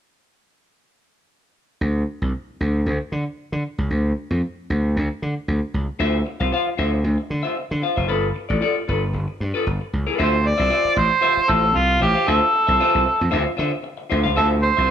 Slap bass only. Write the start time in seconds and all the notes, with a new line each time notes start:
1.81 D2
2.22 C2
2.61 D2
2.86 D2
3.12 D3
3.52 D3
3.78 C#2
3.90 D2
4.30 F2
4.70 D2
4.96 D2
5.22 D3
5.48 D2
5.74 C#2
6.00 D2
6.40 C2
6.79 D2
7.04 D2
7.30 D3
7.71 D3
7.97 F#1
8.09 G1
8.50 A1
8.88 G1
9.13 G1
9.40 G2
9.67 G1
9.93 C#2
10.19 D2
10.59 C2
10.85 muted slap bass stroke
10.96 A1
11.37 muted slap bass stroke
11.49 A1
11.76 C2
12.02 A1
12.28 D2
12.68 C2
12.95 C2
13.21 F2
13.33 D2
13.59 D3
14.11 D2
14.26 C#2
14.37 D2
14.78 C2